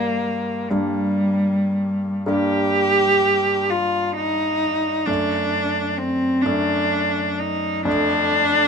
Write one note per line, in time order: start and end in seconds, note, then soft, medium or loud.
0.00 0.67 G2 soft
0.00 0.66 G3 soft
0.00 0.66 A#3 soft
0.00 0.74 A#3 medium
0.00 0.66 D4 soft
0.70 2.23 G2 soft
0.70 2.23 G3 soft
0.70 2.29 G3 medium
0.70 2.23 A#3 soft
0.70 2.23 D4 soft
2.26 5.04 G2 soft
2.26 5.04 G3 soft
2.26 5.04 A#3 soft
2.26 5.04 D4 soft
2.26 3.71 G4 medium
3.70 4.16 F4 medium
4.16 5.07 D#4 medium
5.06 6.41 F#2 soft
5.06 6.41 A3 soft
5.06 5.99 D4 medium
5.06 6.41 D4 soft
5.97 6.44 C4 soft
6.43 7.82 F#2 soft
6.43 7.82 A3 soft
6.43 7.41 D4 medium
6.43 7.82 D4 soft
7.40 7.85 D#4 medium
7.85 8.68 F2 soft
7.85 8.68 A3 soft
7.85 8.68 D4 soft
7.85 8.68 D4 medium